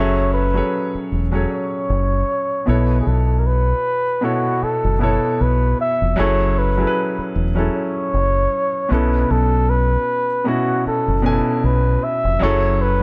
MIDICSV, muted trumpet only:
0, 0, Header, 1, 2, 480
1, 0, Start_track
1, 0, Key_signature, 3, "minor"
1, 0, Tempo, 779221
1, 1880, Time_signature, 4, 2, 24, 8
1, 8025, End_track
2, 0, Start_track
2, 0, Title_t, "Muted trumpet"
2, 0, Program_c, 0, 59
2, 0, Note_on_c, 0, 73, 98
2, 204, Note_off_c, 0, 73, 0
2, 208, Note_on_c, 0, 71, 82
2, 659, Note_off_c, 0, 71, 0
2, 934, Note_on_c, 0, 73, 74
2, 1652, Note_on_c, 0, 71, 71
2, 1661, Note_off_c, 0, 73, 0
2, 1848, Note_off_c, 0, 71, 0
2, 1852, Note_on_c, 0, 68, 58
2, 1893, Note_on_c, 0, 69, 82
2, 1902, Note_off_c, 0, 68, 0
2, 2092, Note_on_c, 0, 70, 59
2, 2101, Note_off_c, 0, 69, 0
2, 2134, Note_on_c, 0, 71, 97
2, 2143, Note_off_c, 0, 70, 0
2, 2615, Note_on_c, 0, 66, 81
2, 2624, Note_off_c, 0, 71, 0
2, 2857, Note_on_c, 0, 69, 78
2, 2866, Note_off_c, 0, 66, 0
2, 3088, Note_off_c, 0, 69, 0
2, 3094, Note_on_c, 0, 69, 82
2, 3336, Note_on_c, 0, 71, 75
2, 3345, Note_off_c, 0, 69, 0
2, 3568, Note_off_c, 0, 71, 0
2, 3578, Note_on_c, 0, 76, 96
2, 3816, Note_on_c, 0, 73, 98
2, 3825, Note_off_c, 0, 76, 0
2, 4059, Note_on_c, 0, 71, 92
2, 4068, Note_off_c, 0, 73, 0
2, 4530, Note_off_c, 0, 71, 0
2, 4779, Note_on_c, 0, 73, 84
2, 5498, Note_on_c, 0, 71, 77
2, 5507, Note_off_c, 0, 73, 0
2, 5736, Note_on_c, 0, 69, 98
2, 5745, Note_off_c, 0, 71, 0
2, 5974, Note_on_c, 0, 71, 97
2, 5984, Note_off_c, 0, 69, 0
2, 6455, Note_on_c, 0, 66, 82
2, 6464, Note_off_c, 0, 71, 0
2, 6687, Note_off_c, 0, 66, 0
2, 6699, Note_on_c, 0, 69, 76
2, 6914, Note_off_c, 0, 69, 0
2, 6937, Note_on_c, 0, 69, 75
2, 7179, Note_on_c, 0, 71, 80
2, 7188, Note_off_c, 0, 69, 0
2, 7417, Note_on_c, 0, 76, 94
2, 7426, Note_off_c, 0, 71, 0
2, 7655, Note_on_c, 0, 73, 109
2, 7665, Note_off_c, 0, 76, 0
2, 7897, Note_on_c, 0, 71, 90
2, 7906, Note_off_c, 0, 73, 0
2, 8025, Note_off_c, 0, 71, 0
2, 8025, End_track
0, 0, End_of_file